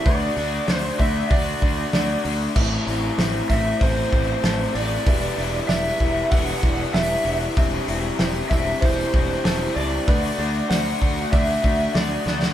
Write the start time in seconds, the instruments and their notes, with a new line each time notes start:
Already playing: analog synth pad D4
0.04 fingered electric bass D2, overdriven electric guitar D3 A3 D4 F#4, analog synth pad A3 F#4 D5, felt piano B4, electric slide guitar D5, kick, open hi-hat
0.36 fingered electric bass D2, overdriven electric guitar D3 A3 D4 F#4, open hi-hat
0.67 fingered electric bass D2, overdriven electric guitar D3 A3 D4 F#4, felt piano C5, snare, open hi-hat
0.74 electric slide guitar C5
0.98 fingered electric bass D2, overdriven electric guitar D3 A3 D4 F#4, electric slide guitar E5, kick, open hi-hat
1.30 fingered electric bass D2, overdriven electric guitar D3 A3 D4 F#4, felt piano D5, electric slide guitar D5, kick, open hi-hat
1.61 fingered electric bass D2, overdriven electric guitar D3 A3 D4 F#4, kick, open hi-hat
1.92 fingered electric bass D2, overdriven electric guitar D3 A3 D4 F#4, felt piano D5, snare, open hi-hat
2.24 fingered electric bass D2, overdriven electric guitar D3 A3 D4 F#4, open hi-hat
2.55 fingered electric bass A1, overdriven electric guitar A2 E3 A3 C4 E4, analog synth pad A3 C4 E4 C5, felt piano E5, kick, crash
2.86 fingered electric bass A1, overdriven electric guitar A2 E3 A3 C4 E4, open hi-hat
3.18 fingered electric bass A1, overdriven electric guitar A2 E3 A3 C4 E4, felt piano C5, snare, open hi-hat
3.49 fingered electric bass A1, overdriven electric guitar A2 E3 A3 C4 E4, electric slide guitar E5, kick, snare, open hi-hat
3.80 fingered electric bass A1, overdriven electric guitar A2 E3 A3 C4 E4, electric slide guitar C5, felt piano C5, kick, open hi-hat
4.12 fingered electric bass A1, overdriven electric guitar A2 E3 A3 C4 E4, kick, open hi-hat
4.43 fingered electric bass A1, overdriven electric guitar A2 E3 A3 C4 E4, felt piano A4, snare, open hi-hat
4.75 fingered electric bass A1, overdriven electric guitar A2 E3 A3 C4 E4, electric slide guitar D5, open hi-hat
5.05 fingered electric bass E1, overdriven electric guitar E3 G3 B3 E4, analog synth pad G3 D4 E4 B4, felt piano B4, kick, open hi-hat
5.38 fingered electric bass E1, overdriven electric guitar E3 G3 B3 E4, open hi-hat
5.68 fingered electric bass E1, overdriven electric guitar E3 G3 B3 E4, felt piano D5, electric slide guitar E5, snare, open hi-hat
6.00 fingered electric bass E1, overdriven electric guitar E3 G3 B3 E4, kick, open hi-hat
6.31 fingered electric bass E1, overdriven electric guitar E3 G3 B3 E4, felt piano E5, electric slide guitar F#5, kick, open hi-hat
6.62 fingered electric bass E1, overdriven electric guitar E3 G3 B3 E4, kick, open hi-hat
6.94 fingered electric bass E1, overdriven electric guitar E3 G3 B3 E4, electric slide guitar E5, felt piano E5, snare, open hi-hat
7.24 fingered electric bass E1, overdriven electric guitar E3 G3 B3 E4, open hi-hat
7.56 fingered electric bass E1, overdriven electric guitar E3 G3 C4 E4, analog synth pad G3 C5, felt piano E5, kick, open hi-hat
7.87 fingered electric bass E1, overdriven electric guitar E3 G3 C4 E4, open hi-hat
8.19 fingered electric bass E1, overdriven electric guitar E3 G3 C4 E4, felt piano C5, snare, open hi-hat
8.49 fingered electric bass E1, overdriven electric guitar E3 G3 C4 E4, electric slide guitar E5, kick, snare, open hi-hat
8.81 fingered electric bass E1, overdriven electric guitar E3 G3 C4 E4, electric slide guitar C5, felt piano C5, kick, open hi-hat
9.13 fingered electric bass E1, overdriven electric guitar E3 G3 C4 E4, kick, open hi-hat
9.44 fingered electric bass E1, overdriven electric guitar E3 G3 C4 E4, felt piano A4, snare, open hi-hat
9.75 fingered electric bass C#2, overdriven electric guitar E3 G3 C4 E4, electric slide guitar D5, open hi-hat
10.06 fingered electric bass D2, overdriven electric guitar D3 A3 D4 F#4, analog synth pad A3 D4 F#4 D5, felt piano B4, kick, open hi-hat
10.38 fingered electric bass D2, overdriven electric guitar D3 A3 D4 F#4, open hi-hat
10.69 fingered electric bass D2, overdriven electric guitar D3 A3 D4 F#4, felt piano C5, electric slide guitar F#5, snare, open hi-hat
11.00 fingered electric bass D2, overdriven electric guitar D3 A3 D4 F#4, kick, open hi-hat
11.31 fingered electric bass D2, overdriven electric guitar D3 A3 D4 F#4, felt piano D5, electric slide guitar E5, kick, open hi-hat
11.63 fingered electric bass D2, overdriven electric guitar D3 A3 D4 F#4, kick, open hi-hat
11.94 fingered electric bass D2, overdriven electric guitar D3 A3 D4 F#4, felt piano D5, electric slide guitar D5, snare, open hi-hat
12.25 fingered electric bass D2, overdriven electric guitar D3 A3 D4 F#4, snare
12.43 snare